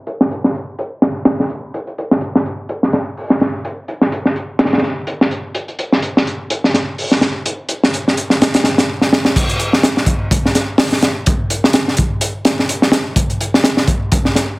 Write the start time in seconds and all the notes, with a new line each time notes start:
0.07 closed hi-hat
0.21 snare
0.31 closed hi-hat
0.44 snare
0.55 closed hi-hat
0.79 closed hi-hat
1.02 snare, closed hi-hat
1.25 snare, closed hi-hat
1.40 snare
1.49 closed hi-hat
1.74 closed hi-hat
1.87 closed hi-hat
1.98 closed hi-hat
2.11 snare
2.21 closed hi-hat
2.35 snare
2.46 closed hi-hat
2.69 closed hi-hat
2.83 snare
2.93 snare, closed hi-hat
3.17 open hi-hat
3.30 snare
3.40 snare, closed hi-hat
3.65 closed hi-hat
3.88 closed hi-hat
4.01 snare
4.12 closed hi-hat
4.25 snare
4.36 closed hi-hat
4.59 snare, closed hi-hat
4.65 snare, closed hi-hat
4.72 snare, closed hi-hat
4.78 snare, closed hi-hat
4.82 snare, closed hi-hat
5.07 closed hi-hat
5.21 snare
5.31 closed hi-hat
5.55 closed hi-hat
5.68 closed hi-hat
5.79 closed hi-hat
5.92 snare
6.02 closed hi-hat
6.17 snare
6.27 closed hi-hat
6.50 closed hi-hat
6.64 snare
6.74 snare, closed hi-hat
6.98 open hi-hat
7.11 snare
7.21 snare, closed hi-hat
7.46 closed hi-hat
7.69 closed hi-hat
7.83 snare
7.94 closed hi-hat
8.08 snare
8.17 closed hi-hat
8.30 snare
8.42 snare, closed hi-hat
8.54 snare, closed hi-hat
8.64 snare, closed hi-hat
8.78 snare, closed hi-hat
9.01 snare
9.13 snare
9.25 snare
9.36 kick, closed hi-hat, crash
9.49 closed hi-hat
9.59 closed hi-hat
9.73 snare
9.83 snare, closed hi-hat
9.97 snare
10.06 kick, closed hi-hat
10.31 kick, closed hi-hat
10.46 snare
10.55 snare, closed hi-hat
10.78 snare, open hi-hat
10.92 snare
11.02 snare, closed hi-hat
11.26 kick, closed hi-hat
11.50 closed hi-hat
11.64 snare
11.73 snare, closed hi-hat
11.88 snare
11.97 kick, closed hi-hat
12.21 closed hi-hat
12.45 snare, closed hi-hat
12.59 snare
12.69 closed hi-hat
12.82 snare
12.92 snare, closed hi-hat
13.16 kick, closed hi-hat
13.30 closed hi-hat
13.41 closed hi-hat
13.54 snare
13.64 snare, closed hi-hat
13.77 snare
13.87 kick, closed hi-hat
14.12 kick, closed hi-hat
14.25 snare
14.35 snare, closed hi-hat